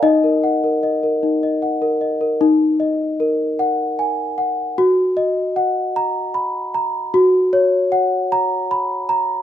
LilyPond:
\new Staff \with { instrumentName = "Celesta" } { \time 6/8 \key ees \minor \tempo 4. = 51 << { ees'16 bes'16 ges''16 bes'16 ees''16 bes'16 ees'16 ees''16 ges''16 bes'16 ees''16 bes'16 | ees'8 ees''8 bes'8 ges''8 aes''8 ges''8 | ges'8 ees''8 ges''8 bes''8 ces'''8 bes''8 | ges'8 des''8 ges''8 bes''8 ces'''8 bes''8 | } \\ { ees''4. r4. | r2. | r2. | r2. | } >> }